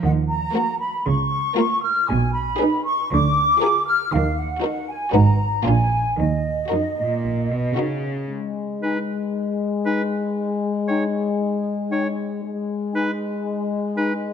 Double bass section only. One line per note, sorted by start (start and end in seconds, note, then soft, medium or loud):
0.03 0.44 D#2 medium
1.07 1.47 C#2 medium
2.10 2.50 B1 medium
3.12 3.52 D2 medium
4.13 4.53 D#2 medium
5.14 5.56 G#1 medium
5.66 6.07 A#1 soft
6.18 6.61 D#2 medium
7.25 7.67 A#1 soft